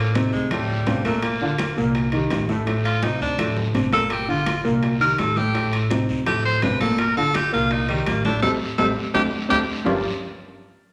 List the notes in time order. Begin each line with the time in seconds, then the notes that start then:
Already playing: A1 A#3
0.14 C3 A3 C4 D#4, high bongo, high conga, high timbale, short guiro
0.32 D2 G#3, high conga, short guiro
0.51 A2 G3 A3 A4, high bongo, high conga, low conga, high timbale, long guiro
0.69 high bongo, high conga
0.86 G1 C3 C4 D4, high bongo, low bongo, high conga, high timbale, low timbale, short guiro
1.05 A#2 A3 A#3 A#4, high bongo, high conga, high timbale, short guiro
1.22 A#3, high bongo, high conga, high timbale, long guiro
1.41 D3 D4 F4, high bongo, high conga
1.58 high bongo, high conga, high timbale, short guiro
1.77 C2 A#2 A#3 A#4, high bongo, high conga, short guiro
1.95 high bongo, high conga, high timbale, long guiro
2.12 D#3 D#4 G4, high conga, high timbale
2.30 A1, high bongo, low bongo, high conga, high timbale, low timbale, short guiro
2.49 A2 A3 A4, high bongo, high conga, short guiro
2.66 A2 A3 A4, high bongo, high conga, high timbale, long guiro
2.85 F4, high bongo, high conga, high timbale
3.03 C3 C4 D#4, high bongo, high conga, high timbale, short guiro
3.20 D2 D4, high conga, short guiro
3.38 A2 A3 A4, high bongo, high conga, low conga, high timbale, long guiro
3.57 low bongo, high conga, low conga
3.74 G1 C3 C4 D4, low bongo, high conga, high timbale, short guiro
3.92 A#2 A#3 A4 A#4, low bongo, high conga, high timbale, short guiro
4.10 G4, high bongo, high conga, high timbale, long guiro
4.28 D3 D4 F4, high bongo, high conga
4.46 high bongo, high conga, high timbale, short guiro
4.64 C2 A#2 A#3 A#4, high bongo, high conga, short guiro
4.83 high bongo, high conga, high timbale, long guiro
5.00 D#3 D#4 G4 A#4, high conga, high timbale
5.18 A1 A4, high bongo, low bongo, high conga, high timbale, short guiro
5.36 A2 A3 G4 A4, high bongo, high conga, short guiro
5.54 A2 A3 A4, high bongo, high conga, high timbale, long guiro
5.73 high bongo, high conga, high timbale
5.90 C3 C4 D#4, high bongo, high conga, high timbale, short guiro
6.09 D2, high conga, short guiro
6.26 A2 A3 G4 A4, high bongo, high conga, low conga, high timbale, long guiro
6.45 C5, high bongo, high conga
6.62 G1 C3 C4 D4 B4, high bongo, low bongo, high conga, high timbale, low timbale, short guiro
6.80 A#2 A#3 A4 A#4, high bongo, high conga, high timbale, short guiro
6.98 A#4, high bongo, high timbale, long guiro
7.16 D3 D4 F4 A4, high bongo, high conga
7.34 G4, high bongo, high conga, high timbale, short guiro
7.52 C2 A#2 A#3 F4 A#4, high bongo, high conga, short guiro
7.70 D#4, high bongo, high conga, high timbale, long guiro
7.89 D#3 G3 D#4 G4, high conga, high timbale
8.06 A1 A#3, high bongo, low bongo, high conga, high timbale, short guiro
8.25 A2 A3 D4 A4, high conga, short guiro
8.42 A1 G3 A3 C4 A4, low bongo, high conga, high timbale, long guiro
8.78 A1 G3 A3 C4 A4, low bongo, high conga, high timbale
9.14 D2 A3 C4 D4 G4, low bongo, high conga, high timbale, long guiro
9.49 D2 A3 C4 D4 G4, low bongo, high conga, high timbale, long guiro
9.84 G1 G3 D4 F4 G4 A#4 D5, low bongo, low conga, low timbale, long guiro